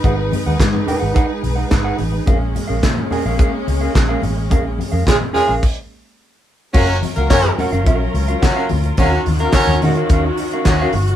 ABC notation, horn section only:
X:1
M:4/4
L:1/16
Q:1/4=107
K:A#phr
V:1 name="Horn section"
z16 | z16 | z4 [G,CEG] z [G,CEG]2 z8 | [F,A,CF]2 z [A,FA] [CFAc]2 z6 [F,A,CF]2 z2 |
[F,A,CF]2 z [A,FA] [CFAc]2 z6 [F,A,CF]2 z2 |]